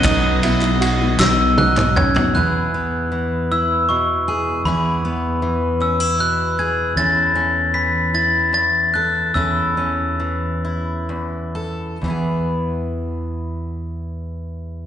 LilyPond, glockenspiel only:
\new Staff \with { instrumentName = "Glockenspiel" } { \time 6/8 \key e \major \tempo 4. = 52 dis'''4. e'''8 fis'''8 gis'''8 | fis'''4. e'''8 cis'''4 | b''4. e'''8 fis'''8 gis'''8 | a'''4 b'''8 a'''8 a'''8 fis'''8 |
e'''2 r4 | r2. | }